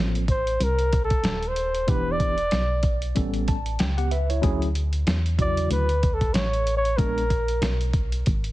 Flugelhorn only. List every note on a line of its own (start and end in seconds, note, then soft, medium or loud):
0.30 0.65 C5 medium
0.63 1.04 A#4 medium
1.04 1.49 A4 medium
1.48 1.91 C5 medium
1.90 2.13 B4 loud
2.12 3.06 D5 loud
5.41 5.70 D5 loud
5.72 6.15 B4 loud
6.14 6.35 A4 medium
6.34 6.76 C#5 medium
6.77 6.99 C#5 loud
6.97 7.94 A#4 medium